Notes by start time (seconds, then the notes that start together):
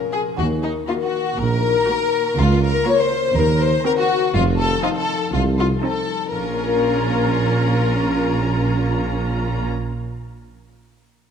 Already playing: A#2 F3 C#4 F4 A#4 A#5
0.12 F4 G#4
0.38 D#2 D#3 F#4
0.63 A#3 D#4
0.88 A#3 F4 F#4 A#4 A#5
1.01 F#4
1.14 F#4
1.38 A#1 A#2 D#4 A#4
1.63 A#3
1.88 A#3 F#4 A#4 A#5
2.13 F#4
2.37 C#2 C#3 F4
2.62 A#3 A#4
2.86 A#3 F4 A#4 C#5 A#5
2.99 C5
3.11 F4
3.35 D#2 D#3 A#4
3.60 C4 C5
3.85 C4 F#4 A#4 A#5
3.97 F#4
4.10 F#4
4.34 F1 F2 F3 F4
4.59 D#4 A4
4.83 C4 D#4 F4 C5 A5
4.96 A4
5.09 A4
5.33 C2 C4 F4
5.58 D#4 F4
5.82 C4 D#4 A4 C5 A5
6.08 A4
6.32 A#1 A#2 C#4 F4 A#4 A#5
6.40 A#3
6.47 C#4
6.54 F4
6.61 A#4
6.68 F5